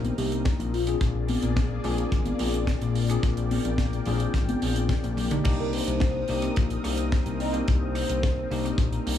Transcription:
0.00 0.11 A#1 medium
0.00 0.14 A#3 medium
0.00 0.69 C4 medium
0.00 0.14 D4 medium
0.00 0.15 D#4 medium
0.00 0.15 G4 loud
0.00 0.15 A#4 medium
0.00 0.69 A#4 medium
0.00 0.69 D#6 medium
0.05 closed hi-hat soft
0.05 high conga medium
0.17 0.54 C2 medium
0.17 0.71 A#3 medium
0.17 0.72 D4 medium
0.17 0.72 D#4 medium
0.17 0.32 G4 medium
0.17 0.72 G4 medium
0.17 open hi-hat loud
0.32 closed hi-hat medium
0.45 kick loud
0.45 snare loud
0.45 closed hi-hat medium
0.59 0.95 A#1 medium
0.59 closed hi-hat medium
0.73 5.41 A#3 medium
0.73 0.82 F4 medium
0.73 2.93 G#4 medium
0.73 5.42 D5 medium
0.73 open hi-hat medium
0.87 1.81 C4 medium
0.87 1.81 D4 medium
0.87 0.96 F4 medium
0.87 1.81 F4 medium
0.87 1.82 G#4 medium
0.87 cross-stick medium
0.87 closed hi-hat medium
1.01 1.37 A#1 loud
1.01 kick loud
1.01 closed hi-hat medium
1.28 open hi-hat medium
1.28 high conga medium
1.43 1.79 A#1 medium
1.43 closed hi-hat medium
1.56 kick loud
1.56 snare loud
1.56 closed hi-hat medium
1.84 2.05 A#1 medium
1.84 2.36 C4 medium
1.84 2.37 D4 medium
1.84 2.37 F4 medium
1.84 2.37 G#4 loud
1.84 cross-stick medium
1.84 open hi-hat medium
1.84 low conga medium
1.98 closed hi-hat medium
2.12 2.33 G#1 medium
2.12 kick medium
2.12 closed hi-hat medium
2.26 closed hi-hat medium
2.26 high conga medium
2.39 2.76 A#1 medium
2.39 3.06 C4 medium
2.39 3.06 D4 medium
2.39 3.06 F4 medium
2.39 3.07 G#4 medium
2.39 open hi-hat loud
2.54 closed hi-hat medium
2.67 kick loud
2.67 snare loud
2.67 closed hi-hat medium
2.82 3.18 A#1 medium
2.82 closed hi-hat medium
2.95 5.43 G5 medium
2.95 open hi-hat loud
3.09 4.03 C4 medium
3.09 4.03 D4 medium
3.09 4.04 F4 medium
3.09 4.04 G#4 medium
3.09 cross-stick medium
3.09 closed hi-hat medium
3.23 3.59 A#1 loud
3.23 kick loud
3.23 closed hi-hat medium
3.37 closed hi-hat medium
3.51 open hi-hat loud
3.51 high conga medium
3.65 4.01 A#1 medium
3.65 closed hi-hat medium
3.78 kick loud
3.78 snare loud
3.78 closed hi-hat medium
3.93 closed hi-hat medium
4.06 4.27 A#1 medium
4.06 4.59 C4 medium
4.06 4.59 D4 medium
4.06 4.59 F4 medium
4.06 4.59 G#4 loud
4.06 open hi-hat medium
4.06 low conga medium
4.20 closed hi-hat medium
4.34 4.55 G#1 medium
4.34 kick medium
4.34 snare medium
4.34 closed hi-hat medium
4.49 closed hi-hat medium
4.49 high conga medium
4.61 4.98 A#1 medium
4.61 5.28 C4 medium
4.61 5.28 D4 medium
4.61 5.29 F4 medium
4.61 5.29 G#4 medium
4.61 open hi-hat loud
4.76 closed hi-hat medium
4.89 kick loud
4.89 snare loud
4.89 closed hi-hat medium
5.04 5.40 A#1 loud
5.04 closed hi-hat medium
5.17 open hi-hat medium
5.17 high tom medium
5.31 5.43 A#3 medium
5.31 5.44 D4 medium
5.31 5.44 D#4 medium
5.31 5.45 G4 medium
5.31 cross-stick medium
5.31 closed hi-hat medium
5.31 mid tom medium
5.44 5.81 C2 loud
5.44 6.23 A#3 loud
5.44 9.18 C4 medium
5.44 6.23 D4 loud
5.44 6.23 D#4 medium
5.44 6.24 G4 loud
5.44 9.18 A#4 medium
5.44 9.18 D#6 medium
5.44 kick loud
5.44 closed hi-hat medium
5.44 crash loud
5.59 5.71 A#4 medium
5.73 6.51 C5 loud
5.73 open hi-hat loud
5.87 6.23 C2 medium
5.87 closed hi-hat medium
6.00 kick loud
6.00 snare loud
6.00 closed hi-hat medium
6.28 6.50 C2 medium
6.28 6.81 A#3 medium
6.28 6.81 D4 medium
6.28 6.81 D#4 medium
6.28 6.81 G4 loud
6.28 open hi-hat medium
6.42 cross-stick medium
6.42 closed hi-hat medium
6.56 6.78 A#1 medium
6.56 kick loud
6.56 closed hi-hat medium
6.70 closed hi-hat medium
6.83 7.20 C2 medium
6.83 7.50 A#3 medium
6.83 7.50 D4 medium
6.83 7.51 D#4 medium
6.83 7.51 G4 medium
6.83 cross-stick medium
6.83 open hi-hat loud
6.98 closed hi-hat medium
7.12 kick loud
7.12 snare loud
7.12 closed hi-hat medium
7.26 7.62 C2 medium
7.26 closed hi-hat medium
7.40 7.54 D#5 medium
7.40 open hi-hat loud
7.53 8.47 A#3 medium
7.53 8.48 D4 medium
7.53 8.48 D#4 medium
7.53 8.48 G4 medium
7.53 closed hi-hat medium
7.68 8.04 C2 loud
7.68 kick loud
7.68 closed hi-hat medium
7.82 8.59 C5 loud
7.95 cross-stick medium
7.95 open hi-hat loud
8.09 8.45 C2 medium
8.09 closed hi-hat medium
8.23 kick loud
8.23 snare loud
8.23 closed hi-hat medium
8.51 8.72 C2 medium
8.51 9.03 A#3 medium
8.51 9.03 D4 medium
8.51 9.04 D#4 medium
8.51 9.04 G4 loud
8.51 open hi-hat medium
8.65 cross-stick medium
8.65 closed hi-hat medium
8.78 8.99 A#1 medium
8.78 kick loud
8.78 closed hi-hat medium
8.93 closed hi-hat soft
9.06 9.18 C2 medium
9.06 9.18 A#3 medium
9.06 9.18 D4 medium
9.06 9.18 D#4 medium
9.06 9.18 G4 medium
9.06 open hi-hat loud

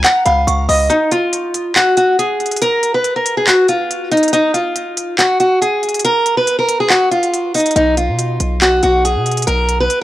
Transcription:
0.04 0.24 F#5 medium
0.04 clap loud
0.04 closed hi-hat medium
0.25 0.46 C#2 loud
0.25 0.66 F5 medium
0.25 0.46 B5 medium
0.25 closed hi-hat medium
0.47 0.68 C#2 loud
0.47 0.68 C#6 medium
0.47 closed hi-hat medium
0.69 0.89 C#2 loud
0.69 0.88 D#5 medium
0.69 0.89 D#6 medium
0.69 open hi-hat medium
0.90 1.09 D#4 medium
0.90 closed hi-hat medium
1.11 1.72 F4 medium
1.11 closed hi-hat medium
1.33 closed hi-hat medium
1.54 closed hi-hat medium
1.76 1.95 F#4 medium
1.76 clap loud
1.76 closed hi-hat medium
1.97 2.17 F#4 medium
1.97 closed hi-hat medium
2.19 2.59 G#4 medium
2.19 closed hi-hat medium
2.40 closed hi-hat soft
2.46 closed hi-hat medium
2.51 closed hi-hat medium
2.56 closed hi-hat medium
2.62 2.92 A#4 loud
2.62 closed hi-hat medium
2.83 closed hi-hat medium
2.94 3.14 B4 medium
3.04 closed hi-hat medium
3.16 3.35 A#4 medium
3.26 closed hi-hat medium
3.37 3.46 G#4 medium
3.47 3.67 F#4 medium
3.47 clap loud
3.47 closed hi-hat medium
3.68 4.09 F4 medium
3.68 closed hi-hat medium
3.91 closed hi-hat medium
4.12 4.31 D#4 medium
4.12 closed hi-hat soft
4.17 closed hi-hat medium
4.23 closed hi-hat medium
4.28 closed hi-hat medium
4.33 4.52 D#4 loud
4.33 closed hi-hat medium
4.54 5.15 F4 medium
4.54 closed hi-hat medium
4.76 closed hi-hat medium
4.97 closed hi-hat medium
5.18 5.38 F#4 medium
5.18 clap loud
5.18 closed hi-hat medium
5.40 5.60 F#4 medium
5.40 closed hi-hat medium
5.62 6.02 G#4 medium
5.62 closed hi-hat medium
5.83 closed hi-hat soft
5.89 closed hi-hat medium
5.94 closed hi-hat medium
5.99 closed hi-hat medium
6.05 6.35 A#4 loud
6.05 closed hi-hat medium
6.26 closed hi-hat medium
6.37 6.57 B4 medium
6.47 closed hi-hat medium
6.59 6.78 A#4 medium
6.69 closed hi-hat medium
6.80 6.89 G#4 medium
6.90 7.10 F#4 medium
6.90 clap loud
6.90 closed hi-hat medium
7.11 7.52 F4 medium
7.11 closed hi-hat medium
7.23 closed hi-hat medium
7.34 closed hi-hat medium
7.54 7.74 D#4 medium
7.54 closed hi-hat medium
7.54 open hi-hat medium
7.60 closed hi-hat medium
7.66 closed hi-hat medium
7.71 closed hi-hat medium
7.76 8.10 B1 loud
7.76 7.95 D#4 loud
7.76 closed hi-hat medium
7.97 8.58 F4 medium
7.97 closed hi-hat medium
8.09 8.39 B2 loud
8.19 closed hi-hat medium
8.40 8.81 B1 loud
8.40 closed hi-hat medium
8.61 8.81 F#4 medium
8.61 clap loud
8.61 closed hi-hat medium
8.83 9.17 B1 loud
8.83 9.03 F#4 medium
8.83 closed hi-hat medium
9.05 9.45 G#4 medium
9.05 closed hi-hat medium
9.16 9.46 B2 loud
9.26 closed hi-hat soft
9.31 closed hi-hat medium
9.37 closed hi-hat medium
9.42 closed hi-hat medium
9.47 9.88 B1 loud
9.47 9.78 A#4 loud
9.47 closed hi-hat medium
9.69 closed hi-hat medium
9.80 10.00 B4 medium
9.90 closed hi-hat medium

